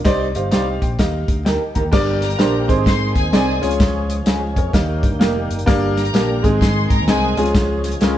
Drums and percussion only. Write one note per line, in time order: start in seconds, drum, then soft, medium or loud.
0.05 kick loud
0.05 snare loud
0.05 closed hi-hat medium
0.35 closed hi-hat medium
0.52 snare loud
0.52 closed hi-hat medium
0.82 kick medium
0.82 closed hi-hat medium
0.99 kick medium
0.99 snare loud
0.99 closed hi-hat medium
1.28 kick medium
1.28 closed hi-hat medium
1.46 snare loud
1.46 closed hi-hat medium
1.75 kick medium
1.75 closed hi-hat medium
1.92 kick loud
1.92 snare loud
1.92 crash medium
2.22 snare soft
2.22 closed hi-hat medium
2.30 closed hi-hat medium
2.39 snare loud
2.39 closed hi-hat medium
2.69 kick medium
2.69 closed hi-hat medium
2.86 kick medium
2.86 snare loud
2.86 closed hi-hat medium
3.16 kick medium
3.16 closed hi-hat medium
3.33 snare loud
3.33 closed hi-hat medium
3.63 closed hi-hat medium
3.71 closed hi-hat medium
3.80 kick loud
3.80 snare loud
3.80 closed hi-hat loud
4.10 closed hi-hat medium
4.26 snare loud
4.26 closed hi-hat medium
4.56 kick medium
4.56 closed hi-hat medium
4.74 kick medium
4.74 snare loud
4.74 closed hi-hat medium
5.03 kick medium
5.03 closed hi-hat medium
5.21 snare loud
5.21 closed hi-hat medium
5.50 closed hi-hat medium
5.59 closed hi-hat soft
5.67 kick loud
5.67 snare medium
5.67 closed hi-hat loud
5.97 snare soft
5.97 closed hi-hat medium
6.05 closed hi-hat medium
6.14 snare loud
6.14 closed hi-hat medium
6.44 kick medium
6.44 closed hi-hat medium
6.61 kick medium
6.61 snare loud
6.61 closed hi-hat medium
6.90 kick medium
6.90 closed hi-hat medium
7.08 snare loud
7.08 closed hi-hat medium
7.37 closed hi-hat medium
7.45 closed hi-hat medium
7.55 kick loud
7.55 snare loud
7.55 closed hi-hat loud
7.84 snare soft
7.84 closed hi-hat medium
7.92 closed hi-hat medium
8.01 snare loud
8.01 closed hi-hat medium